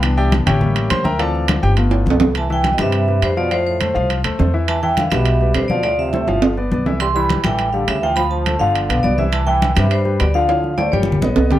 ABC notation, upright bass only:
X:1
M:4/4
L:1/8
Q:1/4=206
K:C
V:1 name="Upright bass" clef=bass
C,,3 A,,,3 D,,2- | D,,3 G,,,3 C,,2- | C,,3 G,,3 F,,2- | F,,3 C,,2 D,, E,,2- |
E,,3 B,,,3 D,,2- | D,,3 G,,,3 C,,2- | C,,3 A,,,3 D,,2- | D,,3 G,,,2 B,,, C,,2- |
C,,3 G,,3 D,,2- | D,,3 G,,,2 _B,,, C,,2 |]